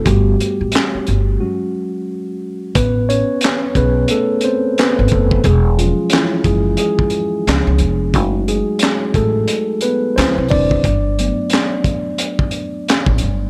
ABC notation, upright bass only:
X:1
M:4/4
L:1/16
Q:"Swing 16ths" 1/4=89
K:Alyd
V:1 name="Upright bass" clef=bass
=G,,,2 z A,,, z2 G,,,2 z8 | A,,,3 z3 B,,,2 z4 z G,,, F,,,2 | E,,,3 z3 F,,,2 z4 C,, C,, ^E,,,2 | F,,,3 z3 A,,,2 z4 =D,, =C,, E,,,2 |
=G,,,3 z8 z2 A,,, G,,,2 |]